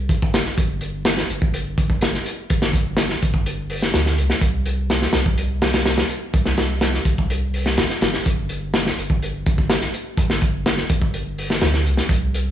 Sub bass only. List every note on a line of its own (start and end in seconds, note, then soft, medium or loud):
0.09 0.17 G1 medium
0.33 0.49 G1 medium
0.58 1.23 G1 loud
1.29 2.19 G1 medium
2.50 3.15 G1 loud
3.23 3.93 G1 medium
3.94 4.19 D2 medium
4.18 4.33 C2 loud
4.42 5.07 C2 loud
5.14 6.03 C2 medium
6.34 6.99 C2 loud
7.05 7.77 C2 medium
7.78 7.85 G1 medium
8.02 8.17 G1 loud
8.26 8.91 G1 loud
8.97 9.87 G1 medium
10.17 10.83 G1 loud
10.90 11.61 G1 medium
11.62 11.87 D2 medium
11.86 12.01 C2 loud
12.09 12.51 C2 loud